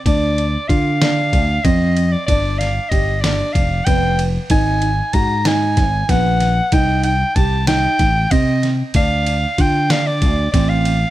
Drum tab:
RD |xxxxxxx|xxxxxxx|xxxxxxx|xxxxxxx|
SD |---o---|-o-o---|---oooo|---oo-o|
BD |o-o-oo-|o-o-oo-|o-o-oo-|o-o-oo-|

RD |xxxxxxx|
SD |---o-o-|
BD |o-o-oo-|